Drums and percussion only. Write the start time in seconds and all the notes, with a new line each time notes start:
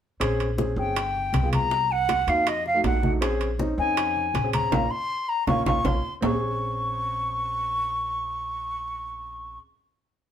0.21 high bongo, high conga, high timbale
0.40 high conga, high timbale
0.58 high bongo, high conga
0.78 high conga
0.96 high bongo, high conga, high timbale
1.15 high conga
1.34 high bongo, low bongo, high conga, high timbale
1.52 high conga, high timbale
1.71 high bongo, high conga
1.90 high bongo, high conga
2.09 high bongo, high conga, high timbale
2.28 high conga, high timbale
2.47 high bongo, high conga, high timbale
2.66 high bongo, high conga
2.84 high bongo, low bongo, high conga, high timbale, low timbale
3.03 high bongo, high conga
3.22 high bongo, high conga, high timbale
3.41 high conga, high timbale
3.59 high bongo, high conga
3.79 high conga
3.97 high bongo, high conga, high timbale
4.16 high conga
4.34 high bongo, low bongo, high conga, high timbale
4.53 high conga, high timbale
4.72 low bongo, high conga, high timbale
5.47 low bongo, high conga, high timbale
5.66 low bongo, high conga, high timbale
5.85 low bongo, high conga, high timbale
6.22 low bongo, low conga, low timbale